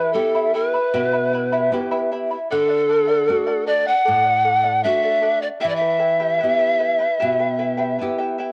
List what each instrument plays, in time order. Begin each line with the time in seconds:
Already playing: nylon-string guitar E3, charango E4 G4 E5 G5 B5, pan flute B4
0.13 nylon-string guitar B3 E4 G4, charango E4 E5 G5 B5, pan flute A4
0.35 charango E4 G4 E5 G5 B5
0.54 charango E4 E5 G5 B5, pan flute B4
0.74 charango E4 E5 B5
0.94 nylon-string guitar B2, charango E4 G4 E5 G5 B5
1.13 charango E4 E5 B5
1.33 charango E4 E5 G5 B5
1.52 charango E4 G4 E5 G5 B5
1.72 nylon-string guitar B3 E4 G4, charango E4 E5 G5 B5
1.91 charango E4 G4 E5 G5 B5
2.12 charango E4 E5 G5 B5
2.31 charango E4 E5 B5
2.50 nylon-string guitar D3, charango A4 D5 F#5, pan flute A4
2.69 charango D5 F#5
2.89 charango A4 D5 F#5
3.07 charango A4 D5 F#5
3.26 nylon-string guitar A3 D4 F#4, charango A4 D5 F#5
3.47 charango A4 D5 F#5
3.66 charango A4 D5 F#5, pan flute D5
3.86 charango D5 F#5, pan flute F#5
4.05 nylon-string guitar A2, charango A4 D5 F#5
4.24 charango D5 F#5
4.44 charango A4 D5 F#5
4.64 charango A4 D5 F#5
4.84 nylon-string guitar A3 D4 F#4, charango A4 D5 F#5, pan flute E5
5.03 charango A4 D5 F#5
5.21 charango A4 D5 F#5
5.41 pan flute D5, charango D5 F#5
5.60 charango E4 G4 B4 E5 G5, pan flute E5
5.65 nylon-string guitar E3
5.69 pan flute D5
5.76 pan flute E5
5.80 charango E4 B4 G5
5.98 charango E4 B4 E5 G5
6.20 charango E4 G4 B4 E5 G5
6.39 charango E4 B4 E5 G5
6.43 nylon-string guitar B3 E4 G4
6.58 charango E4 G4 B4 E5 G5
6.78 charango E4 B4 E5 G5
6.99 charango E4 B4 G5
7.20 nylon-string guitar B2, charango E4 G4 B4 E5 G5
7.39 charango E4 B4 G5
7.59 charango E4 B4 E5 G5
7.77 charango E4 G4 B4 E5 G5
7.99 nylon-string guitar B3 E4 G4, charango E4 B4 E5 G5
8.18 charango E4 G4 B4 E5 G5
8.38 charango E4 B4 E5 G5